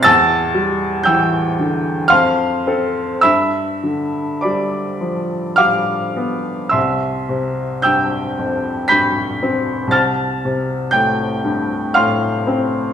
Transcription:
X:1
M:3/4
L:1/8
Q:1/4=56
K:C
V:1 name="Upright piano"
[ae'a']2 [ge'g']2 [fc'f']2 | [ebe']2 [dbd']2 [fd'f']2 | [ec'e']2 [ge'g']2 [bg'b']2 | [af'a']2 [gg']2 [fc'f'] z |]
V:2 name="Upright piano" clef=bass
E,, G, E, D, F,, [CA] | G,, D, G, F, G, B, | C,, C, G,, F,, G,, C | C,, C, A,, G,, A,, C |]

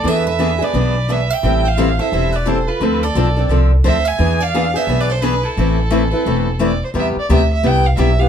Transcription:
X:1
M:4/4
L:1/16
Q:"Swing" 1/4=174
K:Am
V:1 name="Violin"
e2 e4 d6 e2 g2- | g2 f4 e4 d2 c2 B2- | B2 d6 z4 e2 ^g2- | ^g2 f4 e2- (3e2 d2 c2 B2 A2- |
A12 d2 c2 | e2 d2 e2 e2 g2 f2 e2 f2 |]
V:2 name="Steel-string acoustic guitar"
B2 B4 B6 B2 e2- | e2 c4 c4 B2 A2 F2- | F2 A6 z4 c2 e2- | e2 d4 c2- (3c2 B2 A2 ^G2 E2- |
E12- E2 z2 | z16 |]
V:3 name="Steel-string acoustic guitar"
[E,B,D^G]2 z2 [E,B,DG] z [B,DG]2 [E,B,DG]2 z2 [E,B,DG] z3 | [E,G,CEA]2 z2 [E,G,CEA] z [CEA]2 [E,G,CEA]2 z2 [E,G,CEA] z3 | [D,F,CDA]2 z2 [D,F,CDA] z [CDA]2 [D,F,CDA]2 z2 [D,F,CDA] z3 | [E,B,D^G]2 z2 [E,B,DG] z [B,DG]2 [E,B,DG]2 z2 [E,B,DG] z3 |
[E,A,CEB]2 z2 [E,A,CEB] z [CEB]2 [E,A,CEB]2 z2 [E,A,CEB] z3 | [C,G,B,EG]2 z2 [C,G,B,EG] z3 [C,G,B,EG]2 z2 [C,G,B,EG] z [B,EG]2 |]
V:4 name="Upright bass" clef=bass
E,,8 B,,,8 | A,,,8 E,,,8 | D,,4 B,,,4 C,,4 D,,4 | E,,8 B,,,8 |
A,,,8 E,,,8 | E,,2 z2 D,,4 C,,4 B,,,4 |]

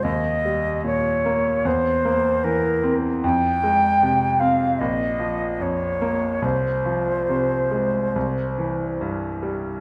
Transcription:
X:1
M:4/4
L:1/8
Q:1/4=74
K:Fm
V:1 name="Flute"
e2 d2 c2 B z | g3 f e2 d2 | c6 z2 |]
V:2 name="Grand piano" clef=bass
E,, G, B,, B, =E,, B, =E, C | F,, A, C, C B,,, F, F,, B, | C,, F, C, A, C,, =E, G,, G, |]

